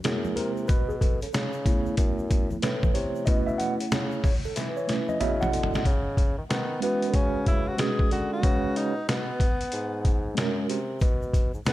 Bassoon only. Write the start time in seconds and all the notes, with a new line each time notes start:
0.04 F#2
0.37 C3
0.69 B2
1.22 C#3
1.33 C#3
1.98 F#2
2.51 A2
2.62 A2
2.94 C3
3.27 B2
3.80 C#3
3.92 C#3
4.56 E3
5.20 C#3
5.52 D3
5.85 C#3
6.38 D#3
6.49 D#3
6.82 E3
7.14 C#3
7.79 B2
8.11 D3
8.43 C#3
8.96 B2
9.07 B2
9.73 G#2
10.37 F#2
10.69 C3
11.02 B2
11.54 G#2
11.66 G#2